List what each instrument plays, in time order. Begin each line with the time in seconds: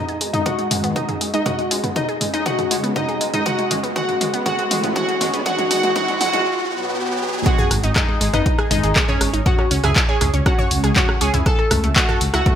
Already playing: analog polysynth D#4, synth pluck D#5, riser
0.09 synth arpeggio sound G#4, closed hi-hat
0.21 detuned saw bass G#1, synth arpeggio sound G#3, open hi-hat
0.33 detuned saw bass G#1, synth arpeggio sound G#3, analog polysynth D#4, synth pluck D#5, closed hi-hat, mid tom
0.46 synth arpeggio sound G#3, analog polysynth F#4, synth pluck F#5, kick, closed hi-hat, mid tom
0.59 synth arpeggio sound G#3, closed hi-hat
0.71 detuned saw bass G#1, analog synth pad G#2 D#3 G#3, synth arpeggio sound G#3, mid tom, open hi-hat
0.83 detuned saw bass G#1, synth arpeggio sound B3, closed hi-hat
0.96 analog polysynth D#4, synth pluck D#5, kick, closed hi-hat, mid tom
1.09 synth arpeggio sound G#4, closed hi-hat, mid tom
1.21 detuned saw bass F#1, synth arpeggio sound G#3, open hi-hat
1.33 detuned saw bass G#1, synth arpeggio sound G#3, analog polysynth D#4, synth pluck D#5, closed hi-hat
1.46 synth arpeggio sound G#3, analog polysynth F#4, synth pluck F#5, kick, closed hi-hat, mid tom
1.58 synth arpeggio sound G#3, closed hi-hat
1.71 detuned saw bass C#2, synth arpeggio sound G#3, open hi-hat
1.83 detuned saw bass C#2, synth arpeggio sound B3, closed hi-hat, mid tom
1.96 analog polysynth D#4, synth pluck D#5, kick, closed hi-hat, mid tom
2.09 synth arpeggio sound G#4, closed hi-hat
2.21 detuned saw bass C#2, synth arpeggio sound G#3, mid tom, open hi-hat
2.33 detuned saw bass C#2, synth arpeggio sound G#3, analog polysynth D#4, synth pluck D#5, closed hi-hat
2.46 synth arpeggio sound G#3, analog polysynth F#4, synth pluck F#5, kick, closed hi-hat, mid tom
2.59 synth arpeggio sound G#3, closed hi-hat, mid tom
2.71 detuned saw bass C#2, analog synth pad C#3 G#3 C#4, synth arpeggio sound G#3, open hi-hat
2.83 detuned saw bass C#2, synth arpeggio sound B3, closed hi-hat
2.96 analog polysynth D#4, synth pluck D#5, kick, closed hi-hat, mid tom
3.08 synth arpeggio sound G#4, closed hi-hat
3.21 detuned saw bass B1, synth arpeggio sound G#3, open hi-hat
3.33 detuned saw bass C#2, synth arpeggio sound G#3, analog polysynth D#4, synth pluck D#5, closed hi-hat, mid tom
3.46 synth arpeggio sound G#3, analog polysynth F#4, synth pluck F#5, kick, closed hi-hat, mid tom
3.58 synth arpeggio sound G#3, closed hi-hat
3.71 detuned saw bass C#2, synth arpeggio sound G#3, mid tom, open hi-hat
3.83 detuned saw bass C#2, synth arpeggio sound B3, closed hi-hat
3.96 synth arpeggio sound G#3, analog polysynth F#4, synth pluck F#5, kick, closed hi-hat, mid tom
4.08 synth arpeggio sound G#3, closed hi-hat, mid tom
4.21 detuned saw bass C#2, synth arpeggio sound G#3, open hi-hat, mid tom
4.33 detuned saw bass C#2, synth arpeggio sound B3, closed hi-hat
4.46 synth arpeggio sound G#3, analog polysynth F#4, synth pluck F#5, kick, closed hi-hat, mid tom
4.58 synth arpeggio sound G#3, closed hi-hat
4.71 detuned saw bass C#2, analog synth pad A2 E3 A3, synth arpeggio sound G#3, open hi-hat, mid tom
4.83 detuned saw bass C#2, synth arpeggio sound B3, closed hi-hat, mid tom
4.96 synth arpeggio sound G#3, analog polysynth F#4, synth pluck F#5, kick, closed hi-hat, mid tom
5.08 synth arpeggio sound G#3, closed hi-hat
5.21 detuned saw bass B1, synth arpeggio sound G#3, mid tom, open hi-hat
5.33 detuned saw bass C#2, synth arpeggio sound B3, closed hi-hat
5.46 synth arpeggio sound G#3, analog polysynth F#4, synth pluck F#5, kick, closed hi-hat, mid tom
5.58 synth arpeggio sound G#3, closed hi-hat, mid tom
5.71 detuned saw bass B1, synth arpeggio sound G#3, analog polysynth F#4, synth pluck F#5, open hi-hat, mid tom
5.83 detuned saw bass B1, synth arpeggio sound G#3, closed hi-hat, mid tom
5.96 synth arpeggio sound G#3, analog polysynth F#4, synth pluck F#5, kick, closed hi-hat, mid tom
6.08 synth arpeggio sound G#3, closed hi-hat, mid tom
6.21 detuned saw bass B1, synth arpeggio sound G#3, analog polysynth F#4, synth pluck F#5, open hi-hat, mid tom
6.33 detuned saw bass B1, synth arpeggio sound G#3, closed hi-hat, mid tom
6.71 analog synth pad B2 F#3 B3
7.46 synth arpeggio sound G#3 G#4, analog polysynth F#4, synth pluck F#5, kick, closed hi-hat
7.58 synth arpeggio sound G#4 G#5, mid tom
7.71 detuned saw bass G#1, cross-stick, open hi-hat
7.84 detuned saw bass G#1, synth arpeggio sound D#4 D#5, closed hi-hat
7.96 synth arpeggio sound G#3 G#4, analog polysynth D#4, synth pluck D#5, kick, cross-stick, clap, closed hi-hat, mid tom
8.08 synth arpeggio sound G#3 G#4
8.21 detuned saw bass G#1, synth arpeggio sound G#3 G#4, open hi-hat
8.33 detuned saw bass G#1, synth arpeggio sound B3 B4, analog polysynth D#4, synth pluck D#5, cross-stick, closed hi-hat, mid tom
8.46 kick, closed hi-hat
8.58 synth arpeggio sound G#4 G#5, cross-stick
8.71 detuned saw bass G#1, analog synth pad G#2 D#3 G#3, synth arpeggio sound G#3 G#4, analog polysynth D#4, synth pluck D#5, mid tom, open hi-hat
8.83 detuned saw bass G#1, synth arpeggio sound G#3 G#4, closed hi-hat
8.96 synth arpeggio sound G#3 G#4, kick, cross-stick, clap, closed hi-hat
9.08 analog polysynth C#4, synth arpeggio sound G#4 G#5, synth pluck C#5, mid tom
9.21 detuned saw bass G#1, cross-stick, open hi-hat
9.33 detuned saw bass G#1, synth arpeggio sound D#4 D#5, closed hi-hat
9.46 synth arpeggio sound C#4 C#5, analog polysynth F#4, synth pluck F#5, kick, closed hi-hat, mid tom
9.59 synth arpeggio sound C#4 C#5, cross-stick
9.71 detuned saw bass C#2, synth arpeggio sound C#4 C#5, open hi-hat
9.84 detuned saw bass C#2, synth arpeggio sound E4 E5, analog polysynth G#4, synth pluck G#5, cross-stick, mid tom, open hi-hat
9.96 kick, clap, closed hi-hat
10.08 analog polysynth G#4, synth arpeggio sound C#5 C#6, synth pluck G#5
10.21 detuned saw bass C#2, synth arpeggio sound C#4 C#5, cross-stick, mid tom, open hi-hat
10.34 detuned saw bass C#2, synth arpeggio sound C#4 C#5, closed hi-hat
10.46 synth arpeggio sound C#4 C#5, analog polysynth F#4, synth pluck F#5, kick, cross-stick, closed hi-hat
10.59 synth arpeggio sound C#5 C#6, mid tom
10.71 detuned saw bass C#2, analog synth pad C#3 G#3 C#4, open hi-hat
10.84 detuned saw bass C#2, synth arpeggio sound G#4 G#5, cross-stick, closed hi-hat
10.96 synth arpeggio sound C#4 C#5, analog polysynth F#4, synth pluck F#5, kick, clap, closed hi-hat, mid tom
11.09 synth arpeggio sound C#4 C#5, cross-stick
11.21 detuned saw bass C#2, synth arpeggio sound C#4 C#5, analog polysynth G#4, synth pluck G#5, open hi-hat
11.34 detuned saw bass C#2, synth arpeggio sound E4 E5, closed hi-hat, mid tom
11.46 analog polysynth A4, synth pluck A5, kick, cross-stick, closed hi-hat
11.59 synth arpeggio sound A4 A5
11.71 detuned saw bass C#2, synth arpeggio sound A3 A4, cross-stick, mid tom, open hi-hat
11.84 detuned saw bass C#2, synth arpeggio sound A3 A4, closed hi-hat
11.96 synth arpeggio sound A3 A4, analog polysynth F#4, synth pluck F#5, kick, clap, closed hi-hat
12.09 synth arpeggio sound A4 A5, cross-stick, mid tom
12.21 detuned saw bass C#2, open hi-hat
12.34 detuned saw bass C#2, synth arpeggio sound E4 E5, analog polysynth F#4, synth pluck F#5, cross-stick, closed hi-hat
12.46 synth arpeggio sound A3 A4, kick, closed hi-hat, mid tom